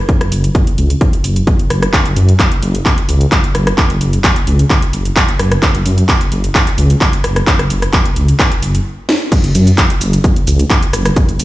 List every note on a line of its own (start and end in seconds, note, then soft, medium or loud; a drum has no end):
0.09 kick loud
0.09 closed hi-hat medium
0.21 0.29 F#1 medium
0.21 cross-stick medium
0.21 closed hi-hat medium
0.32 0.49 F#1 loud
0.32 open hi-hat loud
0.44 closed hi-hat medium
0.55 kick loud
0.55 closed hi-hat medium
0.67 closed hi-hat medium
0.78 0.95 C#2 loud
0.78 open hi-hat medium
0.90 closed hi-hat medium
1.01 kick loud
1.01 closed hi-hat medium
1.13 closed hi-hat medium
1.24 1.42 F#1 medium
1.24 open hi-hat loud
1.36 closed hi-hat medium
1.47 kick loud
1.47 closed hi-hat medium
1.59 closed hi-hat medium
1.70 1.88 F#1 medium
1.70 cross-stick medium
1.70 open hi-hat medium
1.82 cross-stick loud
1.82 closed hi-hat medium
1.93 kick loud
1.93 clap loud
1.93 closed hi-hat medium
2.05 2.14 F#1 loud
2.05 closed hi-hat medium
2.16 2.34 F#2 medium
2.16 open hi-hat loud
2.29 closed hi-hat medium
2.39 kick loud
2.39 clap loud
2.39 closed hi-hat medium
2.52 closed hi-hat medium
2.62 2.80 F#1 medium
2.62 open hi-hat medium
2.75 closed hi-hat medium
2.86 kick loud
2.86 clap loud
2.86 closed hi-hat medium
2.98 closed hi-hat medium
3.09 3.26 C#2 medium
3.09 open hi-hat loud
3.21 closed hi-hat medium
3.32 kick loud
3.32 clap loud
3.32 closed hi-hat medium
3.44 closed hi-hat medium
3.55 3.72 F#1 medium
3.55 cross-stick medium
3.55 open hi-hat medium
3.67 cross-stick loud
3.67 closed hi-hat medium
3.78 kick loud
3.78 clap loud
3.78 closed hi-hat medium
3.90 3.98 F#1 medium
3.90 closed hi-hat medium
4.01 4.19 F#1 loud
4.01 open hi-hat loud
4.13 closed hi-hat medium
4.24 kick loud
4.24 clap loud
4.24 closed hi-hat medium
4.36 closed hi-hat medium
4.47 4.65 C#2 loud
4.47 open hi-hat medium
4.59 closed hi-hat medium
4.70 kick loud
4.70 clap loud
4.70 closed hi-hat medium
4.82 closed hi-hat medium
4.93 5.11 F#1 medium
4.93 open hi-hat medium
5.05 closed hi-hat medium
5.16 kick loud
5.16 clap loud
5.16 closed hi-hat medium
5.29 closed hi-hat medium
5.39 5.57 F#1 medium
5.39 cross-stick medium
5.39 open hi-hat medium
5.52 cross-stick medium
5.52 closed hi-hat medium
5.63 kick loud
5.63 clap loud
5.63 closed hi-hat medium
5.75 5.83 F#1 loud
5.75 closed hi-hat medium
5.86 6.03 F#2 loud
5.86 open hi-hat loud
5.98 closed hi-hat medium
6.09 kick loud
6.09 clap loud
6.09 closed hi-hat medium
6.21 closed hi-hat medium
6.32 6.49 F#1 loud
6.32 open hi-hat medium
6.44 closed hi-hat medium
6.55 kick loud
6.55 clap loud
6.55 closed hi-hat medium
6.67 closed hi-hat medium
6.78 6.95 C#2 medium
6.78 open hi-hat loud
6.90 closed hi-hat medium
7.01 kick loud
7.01 clap loud
7.01 closed hi-hat medium
7.13 closed hi-hat medium
7.24 7.42 F#1 medium
7.24 cross-stick medium
7.24 open hi-hat medium
7.36 cross-stick medium
7.36 closed hi-hat medium
7.47 kick loud
7.47 clap loud
7.47 closed hi-hat medium
7.59 7.67 F#1 medium
7.59 cross-stick medium
7.59 closed hi-hat medium
7.70 7.88 F#1 loud
7.70 open hi-hat loud
7.82 cross-stick medium
7.82 closed hi-hat medium
7.93 kick loud
7.93 clap loud
7.93 closed hi-hat medium
8.05 closed hi-hat medium
8.16 8.34 C#2 loud
8.16 open hi-hat medium
8.28 closed hi-hat medium
8.39 kick loud
8.39 cross-stick medium
8.39 clap loud
8.39 closed hi-hat medium
8.52 closed hi-hat medium
8.62 8.80 F#1 medium
8.62 open hi-hat loud
8.75 closed hi-hat medium
9.09 snare medium
9.32 kick loud
9.32 closed hi-hat medium
9.32 crash loud
9.32 shaker soft
9.44 9.52 F#1 loud
9.44 closed hi-hat medium
9.44 shaker soft
9.55 9.72 F#2 loud
9.55 open hi-hat loud
9.55 shaker medium
9.67 closed hi-hat medium
9.67 shaker soft
9.78 kick loud
9.78 clap loud
9.78 closed hi-hat medium
9.78 shaker soft
9.90 closed hi-hat medium
9.90 shaker soft
10.01 10.18 F#1 loud
10.01 open hi-hat loud
10.01 shaker medium
10.13 closed hi-hat medium
10.13 shaker soft
10.24 kick loud
10.24 closed hi-hat medium
10.24 shaker soft
10.36 closed hi-hat medium
10.36 shaker soft
10.47 10.65 C#2 medium
10.47 open hi-hat loud
10.47 shaker medium
10.59 closed hi-hat medium
10.59 shaker soft
10.70 kick loud
10.70 clap loud
10.70 closed hi-hat medium
10.70 shaker soft
10.82 closed hi-hat medium
10.82 shaker soft
10.93 11.11 F#1 medium
10.93 cross-stick medium
10.93 open hi-hat loud
10.93 shaker medium
11.05 cross-stick loud
11.05 closed hi-hat medium
11.05 shaker soft
11.16 kick loud
11.16 closed hi-hat medium
11.16 shaker soft
11.28 11.37 F#1 medium
11.28 closed hi-hat medium
11.28 shaker soft
11.39 11.44 F#1 loud
11.39 open hi-hat loud
11.39 shaker medium